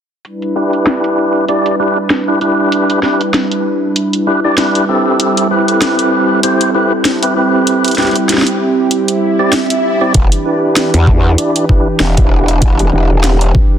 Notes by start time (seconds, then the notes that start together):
0.25 G3 D4 E4 B4, closed hi-hat
0.42 closed hi-hat
0.56 D4 E4 G4 B4
0.73 closed hi-hat
0.87 snare, closed hi-hat
1.04 closed hi-hat
1.48 D4 E4 G4 D5, closed hi-hat
1.66 closed hi-hat
1.80 D4 E4 G4 B4
2.10 snare, closed hi-hat
2.28 D4 E4 G4 B4
2.41 D4 E4 G4 B4, closed hi-hat
2.72 closed hi-hat
2.90 closed hi-hat
3.03 D4 E4 G4 B4, snare
3.21 closed hi-hat
3.34 snare, closed hi-hat
3.52 closed hi-hat
3.96 closed hi-hat
4.13 closed hi-hat
4.27 D4 E4 G4 B4
4.44 D4 E4 G4 D5
4.58 D4 E4 G4 B4, snare, closed hi-hat
4.75 closed hi-hat
4.89 C4 E4 G4 A4
5.20 C4 A4, closed hi-hat
5.37 closed hi-hat
5.51 C4 E4 G4 B4
5.68 closed hi-hat
5.82 snare, closed hi-hat
5.99 closed hi-hat
6.43 C4 E4 G4 C5, closed hi-hat
6.61 closed hi-hat
6.75 C4 E4 G4 B4
7.05 snare, closed hi-hat
7.23 C4 E4 G4 B4, closed hi-hat
7.36 C4 E4 G4 B4
7.67 G4, closed hi-hat
7.84 closed hi-hat
7.88 closed hi-hat
7.91 closed hi-hat
7.95 snare, closed hi-hat
7.98 C4 E4 G4 B4, snare, closed hi-hat
8.02 snare, closed hi-hat
8.07 snare, closed hi-hat
8.08 snare, closed hi-hat
8.13 snare, closed hi-hat
8.29 snare, closed hi-hat
8.33 snare
8.38 snare
8.42 snare
8.47 closed hi-hat
8.91 closed hi-hat, swell
9.08 closed hi-hat
9.39 C4 E4 G4 D5
9.53 snare, closed hi-hat
9.70 closed hi-hat
10.01 C4 E4 G4 D5
10.14 E1 E3 D4 G4 B4, kick, closed hi-hat
10.32 closed hi-hat
10.45 D4 E4 G4 B4
10.76 snare, closed hi-hat
10.94 E2, closed hi-hat
11.07 kick
11.38 D4 E4 G4 D5, closed hi-hat
11.56 closed hi-hat
11.69 D4 E4 G4 B4, kick
12.00 E1, snare
12.17 D4 E4 G4 B4, kick, closed hi-hat
12.31 D4 E4 G4 B4
12.48 closed hi-hat
12.62 kick, closed hi-hat
12.79 closed hi-hat
12.93 E1 D4 E4 G4 B4
13.24 snare, closed hi-hat
13.41 closed hi-hat
13.55 kick